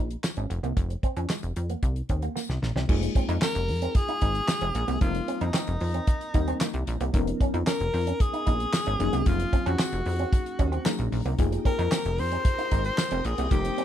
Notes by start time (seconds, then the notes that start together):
Already playing: A#1
0.11 closed hi-hat
0.24 snare, clap, tambourine
0.37 G#1 C#4, closed hi-hat
0.50 F1, muted clean electric guitar stroke, closed hi-hat
0.63 C2 A#3, closed hi-hat
0.77 F1, kick, closed hi-hat
0.90 muted clean electric guitar stroke, closed hi-hat
1.03 C4, kick, closed hi-hat
1.17 F2 C#4, closed hi-hat
1.29 G#3, snare, clap, tambourine
1.43 F1, closed hi-hat
1.56 F2, muted clean electric guitar stroke, closed hi-hat
1.70 A#3, closed hi-hat
1.83 C2, muted clean electric guitar stroke, kick, closed hi-hat
1.96 closed hi-hat
2.09 D#2 C4, kick, closed hi-hat
2.22 A#3, closed hi-hat
2.36 A#3, snare, tambourine
2.49 C2, muted clean electric guitar stroke, snare
2.62 A#1, snare
2.76 C2 C4, snare
2.88 F1 G#3 A#3 D#4 F4 G#4, kick, crash
3.02 muted clean electric guitar stroke, closed hi-hat
3.15 C4, kick, closed hi-hat
3.29 F2 D#4, closed hi-hat
3.42 C4 A#4, snare, clap, tambourine
3.55 F1, closed hi-hat
3.68 F2, muted clean electric guitar stroke, open hi-hat
3.82 C4, closed hi-hat
3.95 G#4, muted clean electric guitar stroke, kick, closed hi-hat
4.08 D#4, closed hi-hat
4.21 G#1 D#4, kick, closed hi-hat
4.35 closed hi-hat
4.48 snare, clap, tambourine
4.61 F1 C4, closed hi-hat
4.75 A#1, muted clean electric guitar stroke, closed hi-hat
4.88 C2 A#3, closed hi-hat
5.00 F1 G3 A#3 C4 D#4 F4 A#4, kick, closed hi-hat
5.15 muted clean electric guitar stroke, closed hi-hat
5.28 C4, closed hi-hat
5.41 F2 D#4, closed hi-hat
5.54 C4, snare, clap, tambourine
5.67 F1, closed hi-hat
5.80 F2, muted clean electric guitar stroke, open hi-hat
5.94 C4, closed hi-hat
6.07 muted clean electric guitar stroke, kick, closed hi-hat
6.21 closed hi-hat
6.34 D#2 G3 A#3 C4 D#4 A#4, kick, closed hi-hat
6.48 C4, closed hi-hat
6.61 A#3, snare, clap, tambourine
6.74 C2, muted clean electric guitar stroke, closed hi-hat
6.87 A#1, closed hi-hat
7.01 C2 A#3, closed hi-hat
7.13 F1 F3 B3 C#4 D#4 A#4, kick, closed hi-hat
7.27 muted clean electric guitar stroke, closed hi-hat
7.41 C#4, kick, closed hi-hat
7.54 F2 D#4, closed hi-hat
7.67 C#4 A#4, snare, clap, tambourine
7.80 F1, closed hi-hat
7.93 F2, muted clean electric guitar stroke, open hi-hat
8.07 C#4, closed hi-hat
8.20 G#4, muted clean electric guitar stroke, kick, closed hi-hat
8.33 D#4, closed hi-hat
8.46 A#1 D#4, kick, closed hi-hat
8.60 closed hi-hat
8.73 snare, clap, tambourine
8.86 G#1 C#4, closed hi-hat
8.99 F1 F#3 A#3 C#4 D#4 G#4, muted clean electric guitar stroke, closed hi-hat
9.13 C2 A#3, closed hi-hat
9.26 F1 F4, kick, closed hi-hat
9.39 muted clean electric guitar stroke, closed hi-hat
9.53 C4, kick, closed hi-hat
9.66 F2 C#4 F#4, closed hi-hat
9.79 C4, snare, clap, tambourine
9.93 F1, closed hi-hat
10.06 F2, muted clean electric guitar stroke, open hi-hat
10.19 C4, closed hi-hat
10.33 muted clean electric guitar stroke, kick, closed hi-hat
10.46 closed hi-hat
10.59 D#2 C#4, kick, closed hi-hat
10.72 C4, closed hi-hat
10.85 F#3 A#3 C#4 D#4 G#4 A#5, snare, clap, tambourine
10.98 A#1, muted clean electric guitar stroke, closed hi-hat
11.12 A#1, open hi-hat
11.25 C2 A#3, closed hi-hat
11.38 F1 A#3 D#4 F4 G4 G#4 A#4 G5 A#5 D#6, kick, closed hi-hat
11.52 muted clean electric guitar stroke, closed hi-hat
11.65 C4 A#4, kick, closed hi-hat
11.79 F2 D#4, closed hi-hat
11.91 C4, snare, clap, tambourine
12.05 F1, closed hi-hat
12.18 F2 C5, muted clean electric guitar stroke, open hi-hat
12.32 C4, closed hi-hat
12.45 muted clean electric guitar stroke, kick, closed hi-hat
12.58 D#4, closed hi-hat
12.71 G#1 D#4, kick, closed hi-hat
12.85 C5, closed hi-hat
12.98 snare, clap, tambourine
13.11 F1 C4, closed hi-hat
13.25 A#1 G#4, muted clean electric guitar stroke, closed hi-hat
13.38 C2 A#3, closed hi-hat
13.50 F1 G3 A#3 C4 D#4 G4 A#4 C5 A#5, kick, closed hi-hat
13.65 muted clean electric guitar stroke, closed hi-hat
13.78 C4, closed hi-hat